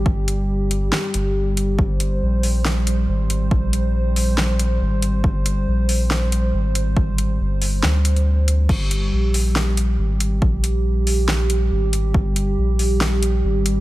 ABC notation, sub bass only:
X:1
M:4/4
L:1/8
Q:"Swing 16ths" 1/4=139
K:Gphr
V:1 name="Sub bass" clef=bass
G,,,4 z G,,,3 | G,,,2 B,,,4 A,,,2 | B,,,6 A,,,2 | G,,,2 B,,,4 A,,,2 |
A,,,2 G,,,2 D,,4 | G,,,2 B,,,4 A,,,2 | B,,,6 A,,,2 | G,,,2 B,,,4 A,,,2 |]